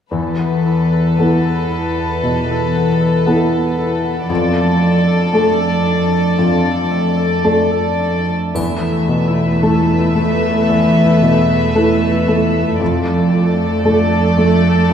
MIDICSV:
0, 0, Header, 1, 7, 480
1, 0, Start_track
1, 0, Tempo, 1061947
1, 55, Time_signature, 4, 2, 24, 8
1, 1014, Tempo, 1036269
1, 2934, Tempo, 1081081
1, 4374, Tempo, 1054482
1, 6787, End_track
2, 0, Start_track
2, 0, Title_t, "Violin section"
2, 0, Program_c, 0, 48
2, 56, Note_on_c, 0, 71, 33
2, 58, Note_on_c, 0, 69, 32
2, 1948, Note_off_c, 0, 71, 0
2, 1949, Note_off_c, 0, 69, 0
2, 1961, Note_on_c, 0, 69, 44
2, 1964, Note_on_c, 0, 74, 42
2, 3785, Note_off_c, 0, 69, 0
2, 3786, Note_off_c, 0, 74, 0
2, 3897, Note_on_c, 0, 76, 43
2, 3898, Note_on_c, 0, 71, 40
2, 5801, Note_off_c, 0, 71, 0
2, 5801, Note_off_c, 0, 76, 0
2, 5816, Note_on_c, 0, 74, 43
2, 5817, Note_on_c, 0, 69, 45
2, 6787, Note_off_c, 0, 69, 0
2, 6787, Note_off_c, 0, 74, 0
2, 6787, End_track
3, 0, Start_track
3, 0, Title_t, "Viola section"
3, 0, Program_c, 1, 48
3, 3898, Note_on_c, 1, 57, 39
3, 3899, Note_on_c, 1, 69, 37
3, 5801, Note_off_c, 1, 57, 0
3, 5802, Note_off_c, 1, 69, 0
3, 5815, Note_on_c, 1, 57, 41
3, 5815, Note_on_c, 1, 69, 41
3, 6787, Note_off_c, 1, 57, 0
3, 6787, Note_off_c, 1, 69, 0
3, 6787, End_track
4, 0, Start_track
4, 0, Title_t, "Harp"
4, 0, Program_c, 2, 46
4, 58, Note_on_c, 2, 52, 33
4, 174, Note_on_c, 2, 59, 25
4, 295, Note_on_c, 2, 64, 22
4, 420, Note_on_c, 2, 69, 25
4, 541, Note_on_c, 2, 71, 27
4, 651, Note_off_c, 2, 69, 0
4, 657, Note_on_c, 2, 69, 27
4, 772, Note_off_c, 2, 64, 0
4, 777, Note_on_c, 2, 64, 24
4, 890, Note_off_c, 2, 59, 0
4, 896, Note_on_c, 2, 59, 26
4, 1008, Note_off_c, 2, 52, 0
4, 1014, Note_on_c, 2, 52, 32
4, 1131, Note_off_c, 2, 64, 0
4, 1137, Note_on_c, 2, 64, 25
4, 1246, Note_off_c, 2, 59, 0
4, 1251, Note_on_c, 2, 59, 27
4, 1363, Note_off_c, 2, 69, 0
4, 1369, Note_on_c, 2, 69, 30
4, 1481, Note_off_c, 2, 71, 0
4, 1487, Note_on_c, 2, 71, 29
4, 1603, Note_off_c, 2, 69, 0
4, 1609, Note_on_c, 2, 69, 33
4, 1722, Note_off_c, 2, 64, 0
4, 1728, Note_on_c, 2, 64, 28
4, 1841, Note_off_c, 2, 59, 0
4, 1846, Note_on_c, 2, 59, 31
4, 1963, Note_on_c, 2, 53, 40
4, 1983, Note_off_c, 2, 71, 0
4, 1984, Note_off_c, 2, 52, 0
4, 1984, Note_off_c, 2, 64, 0
4, 1985, Note_off_c, 2, 59, 0
4, 2087, Note_on_c, 2, 57, 31
4, 2204, Note_on_c, 2, 62, 28
4, 2319, Note_off_c, 2, 69, 0
4, 2325, Note_on_c, 2, 69, 37
4, 2440, Note_off_c, 2, 62, 0
4, 2446, Note_on_c, 2, 62, 38
4, 2564, Note_off_c, 2, 69, 0
4, 2570, Note_on_c, 2, 69, 35
4, 2684, Note_off_c, 2, 62, 0
4, 2690, Note_on_c, 2, 62, 35
4, 2803, Note_off_c, 2, 57, 0
4, 2809, Note_on_c, 2, 57, 32
4, 2925, Note_off_c, 2, 53, 0
4, 2930, Note_on_c, 2, 53, 38
4, 3040, Note_off_c, 2, 62, 0
4, 3045, Note_on_c, 2, 62, 33
4, 3159, Note_off_c, 2, 57, 0
4, 3164, Note_on_c, 2, 57, 38
4, 3274, Note_off_c, 2, 69, 0
4, 3279, Note_on_c, 2, 69, 30
4, 3396, Note_off_c, 2, 62, 0
4, 3401, Note_on_c, 2, 62, 34
4, 3515, Note_off_c, 2, 69, 0
4, 3521, Note_on_c, 2, 69, 31
4, 3644, Note_off_c, 2, 62, 0
4, 3649, Note_on_c, 2, 62, 26
4, 3770, Note_off_c, 2, 57, 0
4, 3775, Note_on_c, 2, 57, 26
4, 3895, Note_on_c, 2, 52, 35
4, 3914, Note_off_c, 2, 53, 0
4, 3915, Note_off_c, 2, 62, 0
4, 4052, Note_off_c, 2, 57, 0
4, 4057, Note_on_c, 2, 57, 25
4, 4217, Note_on_c, 2, 64, 28
4, 4374, Note_on_c, 2, 81, 32
4, 4529, Note_off_c, 2, 64, 0
4, 4535, Note_on_c, 2, 64, 31
4, 4690, Note_off_c, 2, 57, 0
4, 4696, Note_on_c, 2, 57, 30
4, 4850, Note_off_c, 2, 52, 0
4, 4856, Note_on_c, 2, 52, 28
4, 5015, Note_off_c, 2, 64, 0
4, 5021, Note_on_c, 2, 64, 29
4, 5177, Note_off_c, 2, 57, 0
4, 5183, Note_on_c, 2, 57, 31
4, 5275, Note_off_c, 2, 69, 0
4, 5342, Note_on_c, 2, 71, 33
4, 5498, Note_off_c, 2, 64, 0
4, 5503, Note_on_c, 2, 64, 32
4, 5657, Note_off_c, 2, 57, 0
4, 5663, Note_on_c, 2, 57, 29
4, 5819, Note_on_c, 2, 53, 34
4, 5837, Note_off_c, 2, 52, 0
4, 5839, Note_off_c, 2, 64, 0
4, 5973, Note_off_c, 2, 57, 0
4, 5979, Note_on_c, 2, 57, 32
4, 6138, Note_on_c, 2, 62, 25
4, 6150, Note_off_c, 2, 81, 0
4, 6453, Note_off_c, 2, 62, 0
4, 6458, Note_on_c, 2, 62, 36
4, 6614, Note_off_c, 2, 57, 0
4, 6619, Note_on_c, 2, 57, 30
4, 6769, Note_off_c, 2, 53, 0
4, 6787, Note_off_c, 2, 57, 0
4, 6787, Note_off_c, 2, 62, 0
4, 6787, Note_off_c, 2, 71, 0
4, 6787, End_track
5, 0, Start_track
5, 0, Title_t, "Felt piano"
5, 0, Program_c, 3, 0
5, 51, Note_on_c, 3, 40, 33
5, 149, Control_c, 3, 64, 127
5, 524, Note_off_c, 3, 40, 0
5, 536, Note_on_c, 3, 59, 21
5, 537, Note_on_c, 3, 64, 21
5, 541, Note_on_c, 3, 69, 23
5, 994, Note_off_c, 3, 59, 0
5, 994, Note_off_c, 3, 64, 0
5, 996, Note_off_c, 3, 69, 0
5, 1009, Note_on_c, 3, 47, 30
5, 1474, Note_off_c, 3, 47, 0
5, 1487, Note_on_c, 3, 59, 25
5, 1489, Note_on_c, 3, 64, 24
5, 1491, Note_on_c, 3, 69, 28
5, 1945, Note_off_c, 3, 59, 0
5, 1946, Note_off_c, 3, 64, 0
5, 1947, Note_off_c, 3, 69, 0
5, 1965, Note_on_c, 3, 41, 42
5, 1973, Control_c, 3, 64, 0
5, 2062, Control_c, 3, 64, 127
5, 2433, Note_off_c, 3, 41, 0
5, 2447, Note_on_c, 3, 57, 32
5, 2449, Note_on_c, 3, 62, 33
5, 2452, Note_on_c, 3, 69, 33
5, 2916, Note_off_c, 3, 57, 0
5, 2917, Note_off_c, 3, 62, 0
5, 2918, Note_off_c, 3, 69, 0
5, 2934, Note_on_c, 3, 41, 35
5, 3392, Note_off_c, 3, 41, 0
5, 3402, Note_on_c, 3, 57, 28
5, 3403, Note_on_c, 3, 62, 27
5, 3404, Note_on_c, 3, 69, 29
5, 3877, Note_off_c, 3, 57, 0
5, 3877, Note_off_c, 3, 62, 0
5, 3878, Note_off_c, 3, 69, 0
5, 3892, Note_on_c, 3, 40, 37
5, 3904, Control_c, 3, 64, 0
5, 3979, Control_c, 3, 64, 127
5, 4130, Note_on_c, 3, 47, 26
5, 4372, Note_on_c, 3, 57, 24
5, 4372, Note_on_c, 3, 64, 23
5, 4374, Note_on_c, 3, 69, 28
5, 4517, Note_off_c, 3, 47, 0
5, 4597, Note_off_c, 3, 57, 0
5, 4597, Note_off_c, 3, 64, 0
5, 4598, Note_off_c, 3, 69, 0
5, 4611, Note_on_c, 3, 57, 28
5, 4836, Note_off_c, 3, 40, 0
5, 4856, Note_on_c, 3, 40, 29
5, 4999, Note_off_c, 3, 57, 0
5, 5096, Note_on_c, 3, 47, 26
5, 5338, Note_on_c, 3, 57, 24
5, 5340, Note_on_c, 3, 64, 25
5, 5342, Note_on_c, 3, 69, 25
5, 5484, Note_off_c, 3, 47, 0
5, 5561, Note_off_c, 3, 57, 0
5, 5562, Note_off_c, 3, 64, 0
5, 5563, Note_off_c, 3, 69, 0
5, 5579, Note_on_c, 3, 57, 30
5, 5800, Note_off_c, 3, 40, 0
5, 5816, Note_on_c, 3, 41, 35
5, 5818, Note_off_c, 3, 57, 0
5, 5827, Control_c, 3, 64, 0
5, 5913, Control_c, 3, 64, 127
5, 6054, Note_on_c, 3, 53, 30
5, 6295, Note_on_c, 3, 57, 25
5, 6295, Note_on_c, 3, 62, 25
5, 6297, Note_on_c, 3, 69, 29
5, 6439, Note_off_c, 3, 53, 0
5, 6517, Note_off_c, 3, 57, 0
5, 6517, Note_off_c, 3, 62, 0
5, 6518, Note_off_c, 3, 69, 0
5, 6534, Note_on_c, 3, 57, 28
5, 6754, Note_off_c, 3, 41, 0
5, 6770, Note_on_c, 3, 41, 36
5, 6787, Note_off_c, 3, 41, 0
5, 6787, Note_off_c, 3, 57, 0
5, 6787, End_track
6, 0, Start_track
6, 0, Title_t, "Cello section"
6, 0, Program_c, 4, 48
6, 54, Note_on_c, 4, 40, 28
6, 1947, Note_off_c, 4, 40, 0
6, 1967, Note_on_c, 4, 41, 37
6, 3788, Note_off_c, 4, 41, 0
6, 3899, Note_on_c, 4, 40, 35
6, 5802, Note_off_c, 4, 40, 0
6, 5824, Note_on_c, 4, 41, 41
6, 6787, Note_off_c, 4, 41, 0
6, 6787, End_track
7, 0, Start_track
7, 0, Title_t, "Drums"
7, 3896, Note_on_c, 9, 81, 26
7, 3941, Note_off_c, 9, 81, 0
7, 6787, End_track
0, 0, End_of_file